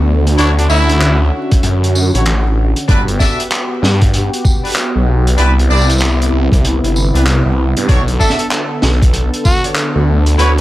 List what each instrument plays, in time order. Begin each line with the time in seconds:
Already playing: detuned saw bass D2, analog synth pad D3 B3 A4
0.27 closed hi-hat
0.38 detuned saw bass D2, analog synth pad C#4 F#4, trumpet D4, horn section E4 F#4 A4 C#5, closed hi-hat
0.58 trumpet D4, closed hi-hat
0.69 detuned saw bass D2, horn section E4 F#4 A4 E5, trumpet E4, tambourine
0.89 closed hi-hat
1.01 clap, closed hi-hat
1.51 kick, closed hi-hat
1.63 detuned saw bass F#2, closed hi-hat
1.84 closed hi-hat
1.95 tambourine
2.14 detuned saw bass A1, horn section E4 F#4 A4 C#5, closed hi-hat
2.26 clap, closed hi-hat
2.76 closed hi-hat
2.88 detuned saw bass G1, analog synth pad B3 F#4 G4, horn section D4 F#4 A4 B4, kick, closed hi-hat
3.08 closed hi-hat
3.19 horn section D4 F#4 A4 E5, kick, snare, tambourine
3.40 closed hi-hat
3.51 clap, closed hi-hat
3.82 detuned saw bass G2, snare
4.01 kick, closed hi-hat
4.14 closed hi-hat
4.33 closed hi-hat
4.45 kick, tambourine
4.64 horn section D4 F#4 A4 B4, closed hi-hat
4.67 closed hi-hat
4.68 closed hi-hat
4.70 closed hi-hat
4.72 closed hi-hat
4.73 closed hi-hat
4.75 clap, closed hi-hat
4.95 detuned saw bass B1
5.27 closed hi-hat
5.38 detuned saw bass C2, analog synth pad C3 E4, horn section D4 E4 G4 B4, closed hi-hat
5.59 closed hi-hat
5.69 detuned saw bass C2, horn section D4 E4 G4 D5, tambourine
5.77 tambourine
5.81 tambourine
5.90 closed hi-hat, tambourine
5.98 clap, closed hi-hat, tambourine
6.22 closed hi-hat
6.32 detuned saw bass C2
6.52 detuned saw bass C2, kick, closed hi-hat
6.65 closed hi-hat
6.83 detuned saw bass G1, closed hi-hat
6.96 tambourine
7.14 detuned saw bass C2, horn section D4 E4 G4 B4, closed hi-hat
7.26 clap, closed hi-hat
7.45 detuned saw bass C2
7.77 detuned saw bass G2, closed hi-hat
7.88 detuned saw bass B1, analog synth pad D3 A4, horn section D4 F#4 A4 C#5, kick, closed hi-hat
8.08 closed hi-hat
8.20 horn section D4 F#4 A4 E5, trumpet A4, kick, tambourine
8.30 snare
8.39 trumpet A4, closed hi-hat
8.51 clap, closed hi-hat
8.82 detuned saw bass B1, snare
9.02 kick, closed hi-hat
9.13 closed hi-hat
9.34 closed hi-hat
9.45 trumpet F#4, kick, tambourine
9.64 horn section D4 F#4 A4 C#5, closed hi-hat
9.76 clap, closed hi-hat
9.95 detuned saw bass D2
10.26 closed hi-hat
10.38 detuned saw bass D2, analog synth pad C#4 F#4, horn section E4 F#4 A4 C#5, trumpet B4, closed hi-hat